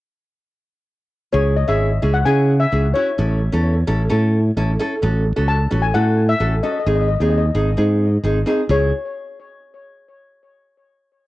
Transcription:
1.32 fingered electric bass C#2, nylon-string guitar C#4 E4 G#4, steel pan C#5
1.56 steel pan D#5
1.67 fingered electric bass G#1, nylon-string guitar C#4 E4 G#4, steel pan E5
2.02 fingered electric bass C#2, nylon-string guitar C#4 E4 G#4
2.14 steel pan F#5
2.25 fingered electric bass C#3, nylon-string guitar C#4 E4 G#4, steel pan G#5
2.60 steel pan E5
2.72 fingered electric bass C#2, nylon-string guitar C#4 E4 G#4
2.94 nylon-string guitar C#4 E4 F#4, steel pan C#5
3.18 fingered electric bass A1, nylon-string guitar C#4 E4 A4
3.52 fingered electric bass E2, nylon-string guitar C#4 E4 A4
3.87 fingered electric bass A1, nylon-string guitar C#4 E4 A4
4.10 fingered electric bass A2, nylon-string guitar C#4 E4 A4
4.57 fingered electric bass A1, nylon-string guitar C#4 E4 A4
4.79 nylon-string guitar C#4 E4 A4
5.02 fingered electric bass A1, nylon-string guitar C#4 F#4 A4
5.36 fingered electric bass C#2, nylon-string guitar C#4 F#4 A4
5.48 steel pan A5
5.70 fingered electric bass A1, nylon-string guitar C#4 F#4 A4
5.82 steel pan G#5
5.94 fingered electric bass A2, nylon-string guitar C#4 F#4 A4, steel pan F#5
6.29 steel pan E5
6.40 fingered electric bass A1, nylon-string guitar C#4 F#4 A4
6.63 nylon-string guitar C#4 F#4 A4, steel pan D#5
6.73 steel pan D#5
6.80 steel pan D#5
6.87 fingered electric bass G#1, nylon-string guitar C4 D#4 G#4
6.95 steel pan D#5
7.02 steel pan D#5
7.08 steel pan D#5
7.15 steel pan D#5
7.20 fingered electric bass D#2, nylon-string guitar C4 D#4 G#4, steel pan D#5
7.30 steel pan D#5
7.38 steel pan D#5
7.55 fingered electric bass G#1, nylon-string guitar C4 D#4 G#4
7.77 fingered electric bass G#2, nylon-string guitar C4 D#4 G#4
8.24 fingered electric bass G#1, nylon-string guitar C4 D#4 G#4
8.46 nylon-string guitar C4 D#4 G#4
8.69 fingered electric bass C#2, nylon-string guitar C#4 E4 G#4, steel pan C#5

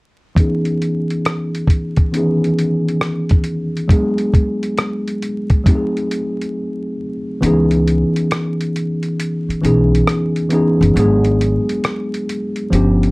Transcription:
0.35 tine electric piano E3 B3 C#4 D#4, kick, closed hi-hat
0.40 tine electric piano G#4
0.65 closed hi-hat
0.82 closed hi-hat
1.10 closed hi-hat
1.25 cross-stick, closed hi-hat
1.55 closed hi-hat
1.67 kick, closed hi-hat
1.96 kick, closed hi-hat
2.12 tine electric piano D#3 B3 C#4 D#4, closed hi-hat
2.17 tine electric piano E3 G#4
2.44 closed hi-hat
2.59 closed hi-hat
2.88 closed hi-hat
3.01 cross-stick, closed hi-hat
3.29 kick, closed hi-hat
3.44 closed hi-hat
3.77 closed hi-hat
3.88 tine electric piano F#3 G#3 B3 D4, kick, closed hi-hat
3.93 tine electric piano G#4
4.18 closed hi-hat
4.34 kick, closed hi-hat
4.63 closed hi-hat
4.78 cross-stick, closed hi-hat
5.08 closed hi-hat
5.22 closed hi-hat
5.50 kick, closed hi-hat
5.64 tine electric piano F#3 A3 C4, kick, closed hi-hat
5.68 tine electric piano D#4 G4
5.75 tine electric piano G#4
5.97 closed hi-hat
6.11 closed hi-hat
6.41 closed hi-hat
7.41 upright bass C#2, tine electric piano E3 B3 C#4 D#4, closed hi-hat
7.46 tine electric piano G#4
7.71 closed hi-hat
7.88 closed hi-hat
8.16 closed hi-hat
8.31 cross-stick, closed hi-hat
8.61 closed hi-hat
8.76 closed hi-hat
9.03 closed hi-hat
9.20 closed hi-hat
9.49 muted upright bass stroke, closed hi-hat
9.61 upright bass B1, tine electric piano E3 B3 C#4 D#4, closed hi-hat
9.66 tine electric piano G#4
9.95 closed hi-hat
10.07 cross-stick, closed hi-hat
10.36 closed hi-hat
10.49 tine electric piano E3 B3 C#4 D#4, closed hi-hat
10.54 tine electric piano G#4
10.81 upright bass F#1, closed hi-hat
10.94 upright bass G#1, tine electric piano F#3 G#3 B3 D4, closed hi-hat
10.99 tine electric piano G#4
11.25 closed hi-hat
11.41 closed hi-hat
11.69 closed hi-hat
11.84 cross-stick, closed hi-hat
12.14 closed hi-hat
12.29 closed hi-hat
12.56 closed hi-hat
12.70 upright bass G1, tine electric piano F3 B3 C#4 D4, closed hi-hat
12.75 tine electric piano G4
13.03 closed hi-hat

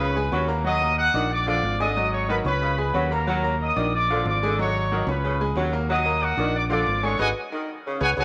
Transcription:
Already playing: fingered electric bass C#2, grand piano C#4 C#5 C#6, trumpet section B4 B5
0.00 saxophone section C#3
0.16 grand piano G#3 G#4 G#5
0.32 fingered electric bass D#2, saxophone section F#3, grand piano C#4 C#5 C#6
0.48 grand piano A#3 A#4 A#5
0.64 grand piano F#3 F#4 F#5, saxophone section F#3, trumpet section D#5 D#6
0.81 grand piano A#3 A#4 A#5
0.98 trumpet section F#4 F#5
1.14 fingered electric bass A#1, saxophone section D#3, grand piano D4 D5 D6
1.31 trumpet section D5 D6
1.47 saxophone section D3, grand piano F3 F4 F5, trumpet section D5 D6
1.63 fingered electric bass G#1
1.80 saxophone section D3, grand piano G#3 G#4 G#5, trumpet section D#5 D#6
1.97 grand piano F#3 F#4 D#5
2.13 trumpet section C#5 C#6
2.29 saxophone section D#3, grand piano F#3 F#4 F#5, trumpet section B4 B5
2.45 fingered electric bass C#2, grand piano C#4 C#5 C#6, trumpet section B4 B5
2.61 saxophone section C#3
2.78 grand piano G#3 G#4 G#5, trumpet section B4 B5
2.94 fingered electric bass D#2, saxophone section F#3, grand piano C#4 C#5 C#6
3.11 grand piano A#3 A#4 A#5, trumpet section A#4 A#5
3.27 grand piano F#3 F#4 F#5, saxophone section F#3
3.43 grand piano A#3 A#4 A#5
3.62 trumpet section D#5 D#6
3.76 fingered electric bass A#1, saxophone section D#3, grand piano D4 D5 D6
3.95 trumpet section D5 D6
4.10 saxophone section D3, grand piano F3 F4 F5
4.25 fingered electric bass G#1, trumpet section D5 D6
4.43 saxophone section D3, grand piano G#3 G#4 G#5
4.58 grand piano F#3 F#4 D#5, trumpet section C#5 C#6
4.92 saxophone section D#3, grand piano F#3 F#4 F#5
5.07 fingered electric bass C#2, grand piano C#4 C#5 C#6, trumpet section B4 B5
5.24 saxophone section C#3
5.41 grand piano G#3 G#4 G#5
5.55 fingered electric bass D#2, saxophone section F#3, grand piano C#4 C#5 C#6
5.73 grand piano A#3 A#4 A#5
5.89 grand piano F#3 F#4 F#5, saxophone section F#3, trumpet section D#5 D#6
6.05 grand piano A#3 A#4 A#5
6.22 trumpet section F#4 F#5
6.37 fingered electric bass A#1, saxophone section D#3, grand piano D4 D5 D6
6.55 trumpet section D5 D6
6.70 saxophone section D3, grand piano F3 F4 F5, trumpet section D5 D6
6.87 fingered electric bass G#1
7.03 saxophone section D3, grand piano G#3 G#4 G#5, trumpet section C#5 C#6
7.19 fingered electric bass G#1, grand piano F#4 G#4 B4, trumpet section D#5 F#5 G#5
7.52 saxophone section D#3
7.86 saxophone section C#3
8.01 fingered electric bass C#2, grand piano G#4 B4 C#5, trumpet section C#5 F#5 G#5
8.17 fingered electric bass C#2, saxophone section F#3, grand piano G#4 B4 C#5, trumpet section C#5 F#5 G#5

